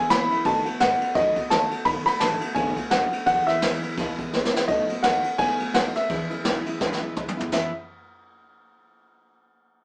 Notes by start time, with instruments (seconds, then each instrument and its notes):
Already playing: steel-string acoustic guitar B3, upright piano G#5
0.10 upright bass A#2, steel-string acoustic guitar E3 G#3 E4, upright piano B5, snare, ride
0.30 steel-string acoustic guitar E3 G#3 B3 E4, muted upright bass stroke, ride
0.45 steel-string acoustic guitar B2 D#3 A3 B3 F#4, upright bass B2, upright piano A5, kick, ride
0.65 steel-string acoustic guitar A3 B3 F#4, muted upright bass stroke, ride
0.80 upright bass G#2, steel-string acoustic guitar D#3 A3 B3 F#4, upright piano F#5, snare, ride
1.01 steel-string acoustic guitar A3 B3 F#4, muted upright bass stroke, ride
1.15 upright bass F#2, steel-string acoustic guitar B2 D#3 A3 B3 F#4, upright piano D#5, kick, snare, ride
1.36 steel-string acoustic guitar A3 B3 F#4, kick, ride
1.50 upright bass D#2, steel-string acoustic guitar D#3 A3 B3 F#4, upright piano A5, snare, ride
1.71 steel-string acoustic guitar A3 B3 F#4, muted upright bass stroke, ride
1.85 upright bass B1, steel-string acoustic guitar B2 D#3 A3 B3 F#4, upright piano B5, kick, ride
2.06 steel-string acoustic guitar A3 B3 F#4, upright piano B5, muted upright bass stroke, snare, ride
2.20 upright bass A1, steel-string acoustic guitar D#3 A3 B3 F#4, upright piano A5, snare, ride
2.41 steel-string acoustic guitar A3 B3 F#4, ride
2.55 upright bass G#1, steel-string acoustic guitar B2 D#3 A3 B3 F#4, upright piano G#5, kick, ride
2.76 steel-string acoustic guitar A3 B3 F#4, muted upright bass stroke, kick, ride
2.90 upright bass F#1, steel-string acoustic guitar D#3 A3 B3 F#4, upright piano F#5, snare, ride
3.11 steel-string acoustic guitar A3 B3 F#4, muted upright bass stroke, ride
3.26 upright bass E1, steel-string acoustic guitar E2 B2 E3 G#3 B3 E4, upright piano F#5, kick, snare, ride
3.47 steel-string acoustic guitar E3 G#3 B3 E4, upright piano E5, muted upright bass stroke, snare, ride
3.62 upright bass E2, steel-string acoustic guitar E3 G#3 B3 E4, snare, ride
3.82 steel-string acoustic guitar E3 G#3 B3 E4, ride
3.98 upright bass D#2, steel-string acoustic guitar E2 B2 E3 G#3 B3 E4, kick, snare, ride
4.19 steel-string acoustic guitar E3 G#3 B3 E4, kick, ride
4.33 upright bass C#2, steel-string acoustic guitar E3 G#3 B3 E4, snare
4.45 snare
4.54 steel-string acoustic guitar E3 G#3 B3 E4, muted upright bass stroke, snare
4.68 upright bass B1, steel-string acoustic guitar B2 D#3 A3 B3 F#4, upright piano D#5, kick, ride
4.89 steel-string acoustic guitar A3 B3 F#4, muted upright bass stroke, ride
5.03 upright bass D#2, steel-string acoustic guitar D#3 A3 B3 F#4, upright piano F#5, snare, ride
5.24 steel-string acoustic guitar A3 B3 F#4, muted upright bass stroke, ride
5.38 upright bass C#2, steel-string acoustic guitar B2 D#3 A3 B3 F#4, upright piano G#5, kick, ride
5.60 steel-string acoustic guitar A3 B3 F#4, muted upright bass stroke, ride
5.74 upright bass D#2, steel-string acoustic guitar D#3 A3 B3 F#4, upright piano F#5, snare, ride
5.95 steel-string acoustic guitar A3 B3 F#4, upright piano E5, snare, ride
6.09 steel-string acoustic guitar E2 B2 E3 G#3 B3 E4, upright bass E2, kick, ride
6.30 steel-string acoustic guitar E3 G#3 B3 E4, ride
6.44 upright bass B1, steel-string acoustic guitar E3 G#3 B3 E4, snare, ride
6.66 steel-string acoustic guitar E3 G#3 B3 E4, ride
6.80 upright bass C#2, steel-string acoustic guitar E2 B2 E3 G#3 B3 E4, kick, snare
6.93 snare
7.01 steel-string acoustic guitar E3 G#3 B3 E4, muted upright bass stroke
7.16 upright bass D#2, steel-string acoustic guitar E3 G#3 B3 E4, kick, mid tom
7.28 mid tom
7.37 steel-string acoustic guitar E3 G#3 B3 E4, floor tom
7.52 steel-string acoustic guitar E2 B2 E3 G#3 B3 E4, upright bass E2, upright piano E5, snare, crash